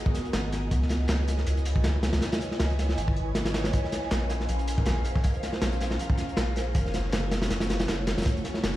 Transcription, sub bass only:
0.33 G#1
0.71 C#2
1.09 C#2
1.47 C#2
1.84 C#2
2.14 C#2
2.60 C#2
2.98 G#1
4.11 A#1
4.49 A#1
4.86 A#1
5.16 A#1
5.62 A#1
6.37 A#1
6.75 F#1
7.13 F#1
7.50 F#1
7.88 F#1
8.17 F#1
8.64 F#1

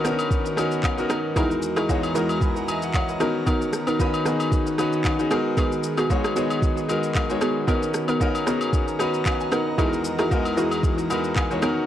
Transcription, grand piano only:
Already playing: B3 C#4 D#4 F#4 A#4
0.04 B3 C#4 D4 F#4 A#4
0.11 D#4
0.57 B3 C#4 D#4 F#4 A#4
0.97 B3 C#4 D#4 F#4 A#4
1.36 E2 G#3 B3 D#4 F#4 A#4
1.88 E2 G#3 B3 D#4 F#4 C#5
2.15 E2 G#3 B3 D#4 F#4 A#4
2.42 G#5 B5
2.56 F#5 A#5
2.68 D#5 E5 G#5
2.83 D#5 F#5
2.95 C#5 E5 F#5
3.09 B4 D#5
3.20 D#3 B3 C#4 D#4 F#4 A#4 A#5
3.99 D#3 B3 C#4 D#4 F#4 B4
4.25 D#3 B3 C#4 D#4 F#4 G#4
4.78 D#3 B3 C#4 D#4 F#4 B4
5.19 D#3 B3 C#4 D#4 F#4 G#4
5.31 G#3 B3 D#4 F#4 A#4
6.09 G#3 B3 D#4 F#4 C#5
6.36 G#3 B3 D#4 F#4 C#5
6.88 G#3 B3 D#4 F#4 A#4
7.29 G#3 B3 D#4 F#4 C#5
7.67 B3 C#4 D#4 F#4 A#4
8.20 B3 C#4 D#4 F#4 A#4
8.46 B3 C#4 D#4 F#4 G#4
8.99 B3 C#4 D#4 F#4 B4
9.26 G#5 B5
9.41 G#5
9.53 D#5 F#5
9.67 B4 D#5
9.78 E2 G#3 B3 D#4 F#4 A4
9.86 A#4
10.30 E2 G#3 B3 D#4 F#4 A#4
10.57 E2 G#3 B3 D#4 F#4 G#4
11.09 E2 G#3 B3 D#4 F#4 A#4 B5
11.37 G#5
11.50 E2 G#3 B3 D#4 F#4 C#5
11.62 D#3 B3 C#4 D#4 F#4 A#4 F#5

